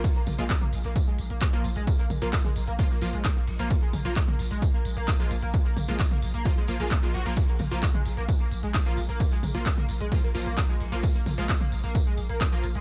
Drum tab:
HH |xxoxx-oxx-oxxxox|x-oxx-oxx-oxx-oo|xxoxx-oxx-oxxxox|x-oxx-oxx-oxx-oo|
TB |x-x-x-x-x-x-x-x-|x-x-x-x-x-x-x---|x-x-x-x-x-x-x-x-|x-x-x-x-x-x-x---|
CP |----x-------x---|----x-------x---|----x-------x---|----x-------x---|
SD |----o--o----o---|-o--oo---o--oo-o|----o--o----o---|-o--oo---o--oo-o|
T2 |--o--o----------|--o--o----------|--o--o----------|--o--o----------|
BD |o---o---o---o---|o---o---o---o---|o---o---o---o---|o---o---o---o---|

HH |xxoxx-oxx-oxxxox|x-oxx-oxx-oxx-oo|xxoxx-oxx-oxxxox|
TB |x-x-x-x-x-x-x-x-|x-x-x-x-x-x-x---|x-x-x-x-x-x-x-x-|
CP |----x-------x---|----x-------x---|----x-------x---|
SD |----o--o----o---|-o--oo---o--oo-o|----o--o----o---|
T2 |--o--o----------|--o--o----------|--o--o----------|
BD |o---o---o---o---|o---o---o---o---|o---o---o---o---|